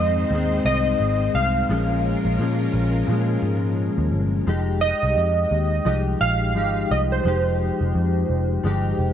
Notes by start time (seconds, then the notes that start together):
Already playing: F2 G#2 D#3 G#3 C4 D#4 C5 D#5
0.29 D#2 G#2 D#3
0.34 G#3 C4
0.65 C2 D#5
1.00 G#1
1.35 C2 F5
1.69 A#1 A#2 F3 G#3 C#4 F4 A#4
2.25 A#1
2.38 A#2 F3 G#3 C#4
2.74 A#1
3.06 A#2 F3
3.11 G#3 C#4
3.43 G#2
3.98 D#2
4.12 G1
4.47 F1 F3 G#3 D#4 G4
4.81 G#3 D#4 G4 D#5
5.03 C2
5.17 F2
5.51 D#2
5.85 C2 F3 G#3 D#4 G4 D#5
6.21 A#1 F5
6.54 G#1 F3 G#3 D#4 G4
6.91 C2 D#5
7.12 C5
7.23 F1 F3 G#3 D#4
7.28 G4
7.81 F1
7.95 F2
8.30 F1
8.64 G1 F3 G#3 D#4 G4
8.99 F1